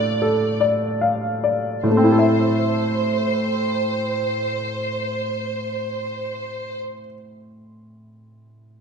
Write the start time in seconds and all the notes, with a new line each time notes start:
Already playing: A3 D4 A4 D5 F5
0.22 A4
0.61 D5
1.01 F5
1.44 D5
1.83 A2 C5
1.90 A3
1.97 C4
2.04 E4
2.12 A4
2.19 E5